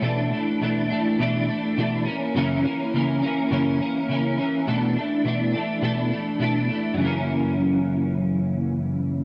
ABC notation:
X:1
M:4/4
L:1/8
Q:1/4=104
K:Bdor
V:1 name="Clean electric guitar"
[B,,E,A,D] [E,A,D] [B,,E,A,D] [E,A,D] [B,,E,A,D] [E,A,D] [B,,E,A,D] [E,^A,C] | [F,,C,E,^A,C] [E,A,C] [C,E,A,C] [E,A,C] [F,,C,E,A,C] [E,A,C] [C,E,A,C] [E,A,C] | [B,,E,A,D] [E,A,D] [B,,E,A,D] [E,A,D] [B,,E,A,D] [E,A,D] [B,,E,A,D] [E,A,D] | [F,,C,E,^A,C]8 |]